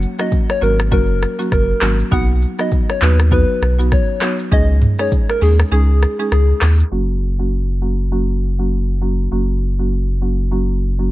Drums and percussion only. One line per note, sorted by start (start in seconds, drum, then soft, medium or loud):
0.02 shaker medium
0.19 cross-stick medium
0.19 shaker medium
0.32 kick medium
0.32 shaker medium
0.50 cross-stick medium
0.62 shaker medium
0.79 cross-stick loud
0.79 shaker medium
0.92 kick loud
0.92 shaker medium
1.22 cross-stick medium
1.22 shaker medium
1.40 shaker medium
1.52 kick loud
1.52 cross-stick medium
1.52 shaker medium
1.81 cross-stick loud
1.81 clap medium
1.81 shaker soft
2.00 shaker medium
2.12 kick loud
2.12 shaker medium
2.42 shaker medium
2.59 cross-stick medium
2.59 shaker medium
2.72 kick medium
2.72 shaker medium
2.90 cross-stick medium
3.02 clap loud
3.02 shaker medium
3.19 cross-stick loud
3.19 shaker medium
3.32 kick loud
3.32 shaker medium
3.62 cross-stick medium
3.62 shaker medium
3.80 shaker medium
3.92 kick loud
3.92 cross-stick medium
3.92 shaker medium
4.21 cross-stick medium
4.21 clap medium
4.21 shaker medium
4.39 shaker medium
4.52 kick loud
4.52 shaker medium
4.82 mid tom medium
4.82 shaker medium
4.99 cross-stick medium
4.99 shaker medium
5.12 kick loud
5.12 shaker medium
5.30 cross-stick medium
5.42 open hi-hat medium
5.42 shaker medium
5.59 cross-stick loud
5.59 shaker medium
5.72 shaker medium
6.02 cross-stick medium
6.02 shaker medium
6.20 shaker medium
6.32 cross-stick medium
6.32 shaker medium
6.61 cross-stick loud
6.61 clap loud
6.61 open hi-hat medium
6.61 shaker medium
6.79 shaker medium